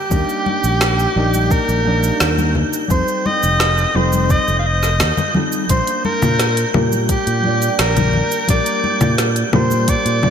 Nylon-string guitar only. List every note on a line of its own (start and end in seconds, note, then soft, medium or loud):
0.10 1.11 G3 medium
0.10 1.12 A#3 medium
0.10 1.12 D4 medium
0.10 1.13 D#4 medium
0.10 1.13 A#4 medium
1.16 1.81 G3 medium
1.16 1.82 A#3 medium
1.16 1.82 D4 medium
1.16 1.82 D#4 medium
1.16 1.82 A#4 medium
1.84 2.85 G3 medium
1.84 2.86 A#3 medium
1.84 2.86 D4 medium
1.84 2.87 D#4 medium
1.84 2.87 D5 medium
2.88 3.90 G3 medium
2.88 3.90 C4 medium
2.88 3.91 D#4 medium
2.88 3.91 F4 medium
2.92 3.92 A4 medium
3.94 4.60 G3 medium
3.94 4.60 C4 medium
3.94 4.61 D#4 medium
3.94 4.61 F4 medium
3.94 4.61 A4 medium
5.34 5.65 G3 medium
5.34 5.65 C4 medium
5.34 5.66 D#4 medium
5.34 5.66 F4 medium
5.34 5.66 A4 loud
5.68 6.70 G3 medium
5.68 6.70 A#3 medium
5.68 6.70 D4 medium
5.68 6.71 F4 medium
5.68 6.72 A#4 medium
6.74 7.40 G3 medium
6.74 7.40 A#3 medium
6.74 7.40 D4 medium
6.74 7.40 F4 medium
6.74 7.41 A#4 medium
7.43 8.44 G3 medium
7.43 8.44 A#3 medium
7.43 8.45 D4 medium
7.43 8.45 F4 medium
7.47 8.46 D5 medium
8.47 9.49 G3 medium
8.47 9.49 A#3 medium
8.47 9.50 D4 medium
8.47 9.50 F4 medium
8.47 9.50 A#4 medium
9.52 10.19 G3 medium
9.52 10.19 A#3 medium
9.52 10.19 D4 medium
9.52 10.19 F4 medium
9.52 10.20 A#4 medium
10.22 10.30 G3 medium
10.22 10.30 A#3 medium
10.22 10.30 D4 medium
10.22 10.30 F4 medium
10.22 10.30 D5 medium